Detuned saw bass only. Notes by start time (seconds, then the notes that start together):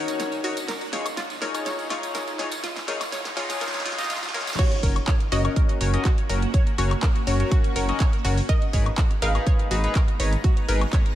4.83 F#1
5.32 F#1
5.81 F#1
6.30 F#1
6.78 F#1
7.27 F#1
7.76 F#1
8.25 F#1
8.73 G#1
9.22 G#1
9.71 G#1
10.20 G#1
10.69 G#1